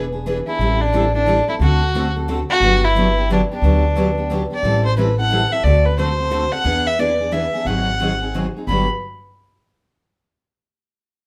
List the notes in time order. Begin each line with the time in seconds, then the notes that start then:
Already playing: E1
0.12 B3 D4 G#4
0.27 E3 B3 D4 G#4 B4
0.47 B3 D4 E4 G#4
0.59 A1 E3 G3 C4 E4 A4
0.80 D4
0.94 E3 G3 C4 E4 A4
1.14 C4 D4 E4 A4
1.26 E3 G3 C4 E4 A4
1.48 C4 E4 A4
1.60 D2 D3 A3 C4 F#4 A4
1.96 D3 A3 C4 F#4 A4
2.16 C4 F#4 A4
2.28 D3 A3 C4 F#4 A4
2.49 C4 F#4 A4
2.60 G1 D3 F#3 B3 D4 G4
2.84 E4
2.96 D3 F#3 B3 D4 G4
3.17 B3 D4 G4
3.30 D3 F#3 B3 D4 G4
3.52 B3 D4 G4
3.62 D2 D3 F#3 B3 D4 G4
3.95 D3 F#3 B3 D4 G4
4.17 B3 D4 G4
4.30 D3 F#3 B3 D4 G4
4.50 B3 D4 G4 D5
4.63 A1 E3 G3 C4 E4 A4
4.85 C5
4.98 E3 G3 C4 E4 A4 B4
5.18 C4 E4 A4 F#5
5.32 E3 G3 C4 E4 A4
5.51 C4 E4 A4 E5
5.64 D2 D3 A3 C4 F#4 A4 D5
5.85 B4
5.98 D3 A3 C4 F#4 A4 C5
6.18 C4 F#4 A4
6.30 D3 A3 C4 F#4 A4
6.52 C4 F#4 A4 F#5
6.64 E2 E3 B3 D4 G#4 B4
6.87 E5
6.99 E3 B3 D4 G#4 B4 D5
7.20 B3 D4 G#4
7.32 E3 B3 D4 G#4 B4 E5
7.54 B3 D4 G#4
7.65 G#1 D#3 F#3 C4 D#4 F#5
7.69 G#4
8.02 D#3 F#3 C4 D#4 G#4
8.22 C4 D#4 G#4
8.35 D#3 F#3 C4 D#4 G#4
8.56 C4 D#4 G#4
8.67 G1 G2 D3 F#3 D4 G4 B5
8.71 B3